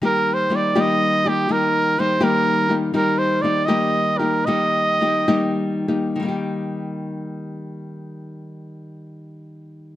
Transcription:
<<
  \new Staff \with { instrumentName = "Trumpet" } { \time 6/8 \key ees \major \tempo 4. = 76 bes'8 c''8 d''8 ees''4 g'8 | bes'4 c''8 bes'4 r8 | bes'8 c''8 d''8 ees''4 bes'8 | ees''2 r4 |
r2. | r2. | }
  \new Staff \with { instrumentName = "Nylon-string guitar" } { \time 6/8 \key ees \major <ees g bes ees' g'>4 <g bes ees' g'>8 <ees g bes ees' g'>4 <bes ees' g'>8 | <ees g bes ees' g'>4 <g bes ees' g'>8 <ees g bes ees' g'>4 <bes ees' g'>8 | <ees g bes ees' g'>4 <g bes ees' g'>8 <ees g bes ees' g'>4 <bes ees' g'>8 | <ees g bes ees' g'>4 <g bes ees' g'>8 <ees g bes ees' g'>4 <bes ees' g'>8 |
<ees g bes ees' g'>2.~ | <ees g bes ees' g'>2. | }
>>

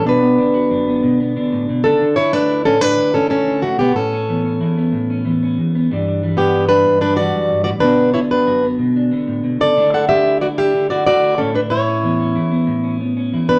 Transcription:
<<
  \new Staff \with { instrumentName = "Steel-string acoustic guitar" } { \time 12/8 \key d \major \tempo 4. = 124 <d' b'>1~ <d' b'>4 r8 <d' a'>8~ | <d' a'>8 <e' cis''>8 <d' b'>4 <cis' a'>8 <d' b'>4 <cis' a'>8 <cis' a'>4 <a fis'>8 <b g'>8 | <cis' a'>1 r2 | r4. <b g'>4 <d' b'>4 <d' b'>8 <fis' d''>4. <fis' d''>8 |
<d' b'>4 <e' cis''>8 <d' b'>4 r2. <a' d''>8~ | <a' d''>8 <a' fis''>8 <g' e''>4 <fis' d''>8 <g' e''>4 <fis' d''>8 <fis' d''>4 <cis' a'>8 <d' b'>8 | <e' cis''>1 r4. <d' b'>8 | }
  \new Staff \with { instrumentName = "Clean electric guitar" } { \time 12/8 \key d \major << { r8 b8 d'8 fis'8 d'8 b4 b8 d'2 | r8 e'8 d'8 e'8 e'8 d'4 e'2~ e'8~ | e'8 cis'8 b8 cis'8 e'8 b4 cis'8 b8 cis'4 b8 | <e g d'>8 d'8 g8 d'8 d'8 g4 d'8 g2 |
<d b d' fis'>8 d'8 b4 fis'8 b4 d'8 b2 | <a d' e'>8 e'8 d'8 e'8 e'8 d'4 e'8 d'8 e'8 e'8 d'8 | r8 cis'8 b8 cis'8 e'8 b4 cis'8 b8 cis'8 e'8 b8 | } \\ { b,4 d4 fis,4 b,4 d8 a,8 b,8 cis8 | d4 a4 a,4 d4 a8 d8 cis8 b,8 | a,4 e4 e,4 a,4 e4 e,4 | g,4 e4 g,4 g,4 e8 fis,8 g,8 a,8 |
b,4 d4 fis,4 b,4 d8 a,8 b,8 cis8 | d4 a2 d4 a4 a,4 | a,4 e4 e,4 a,2 e,4 | } >> }
>>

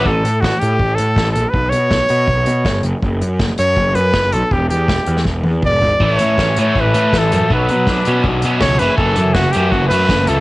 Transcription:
<<
  \new Staff \with { instrumentName = "Trumpet" } { \time 4/4 \key fis \phrygian \tempo 4 = 161 a'4 fis'8 g'4 a'4 a'8 | b'8 cis''2. r8 | r4. cis''4 b'4 a'8 | g'8 g'4. r4 d''4 |
cis''4. cis''8 b'4 a'4 | b'2 r4 cis''8 b'8 | a'4 fis'8 g'8 fis'8 b'4 a'8 | }
  \new Staff \with { instrumentName = "Overdriven electric guitar" } { \clef bass \time 4/4 \key fis \phrygian r1 | r1 | r1 | r1 |
e8 e8 cis'8 a8 e8 a8 e8 a8 | fis8 fis8 d'8 cis'8 fis8 cis'8 fis8 e8 | e8 e8 cis'8 a8 e8 a8 e8 a8 | }
  \new Staff \with { instrumentName = "Distorted electric guitar" } { \clef bass \time 4/4 \key fis \phrygian r1 | r1 | r1 | r1 |
<a, e a>8 <a, e>8 <a, e>8 <a, e a>8 <a, e>8 <a, e a>8 <a, e>8 <a, e>8 | <b, fis b>8 <b, fis>8 <b, fis>8 <b, fis b>8 <b, fis>8 <b, fis b>8 <b, fis>8 <fis, cis fis>8 | <fis, cis fis>8 <fis, cis>8 <fis, cis>8 <fis, cis fis>8 <fis, cis>8 <fis, cis fis>8 <fis, cis>8 <fis, cis>8 | }
  \new Staff \with { instrumentName = "Picked electric bass" } { \clef bass \time 4/4 \key fis \phrygian a,,8 a,8 a,,16 r16 a,8 a,,8 a,8 a,,8 bes,,16 r16 | b,,8 b,8 b,,16 r16 b,8 b,,8 b,8 g,,8 fis,,16 r16 | fis,,8 fis,8 fis,,16 r16 fis,8 fis,,8 fis,8 fis,,8 b,,16 r16 | e,,8 e,8 e,,16 r16 e,8 e,,8 e,8 e,,8 gis,,16 r16 |
a,,8 a,8 a,,16 r16 a,8 a,,8 a,8 a,,8 fis,16 r16 | b,,8 b,8 b,,16 r16 b,8 b,,8 b,8 cis,8 fis,,16 r16 | fis,,8 fis,8 fis,,16 r16 fis,8 fis,,8 fis,8 fis,,8 cis,16 r16 | }
  \new DrumStaff \with { instrumentName = "Drums" } \drummode { \time 4/4 bd8 hh8 <bd sn>8 hh8 bd8 hh8 <bd sn>8 hh8 | bd8 hh8 <bd sn>8 hh8 bd8 hh8 <bd sn>8 hh8 | bd8 hh8 <bd sn>8 hh8 bd8 hh8 <bd sn>8 hh8 | bd8 hh8 <bd sn>8 hh16 sn16 <bd sn>8 tommh8 <bd toml>8 tomfh8 |
bd8 hh8 <bd sn>8 hh8 bd8 hh8 <bd sn>8 hh8 | bd8 hh8 <bd sn>8 hh8 bd8 hh8 <bd sn>8 hh8 | bd8 hh8 <bd sn>8 hh8 bd8 hh8 <bd sn>8 hh8 | }
>>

